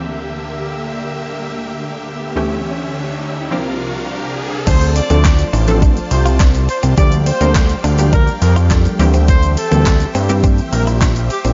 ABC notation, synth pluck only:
X:1
M:4/4
L:1/16
Q:1/4=104
K:Dm
V:1 name="Synth pluck"
[D,,E,B,CG]12- [D,,E,B,CG]2 z2 | [D,,E,A,^CG]8 [F,B,=CG]8 | [F,A,CDA] z2 [F,A,CDA]2 z2 [F,A,CDA]4 z4 z | [F,G,B,DG] z2 [F,G,B,DB]2 z2 [F,G,B,DG]2 z3 [F,G,B,DA]2 [E,G,B,CG]2- |
[E,G,B,CG]2 z [E,G,B,CG]2 z2 [E,G,B,CG]4 z4 z |]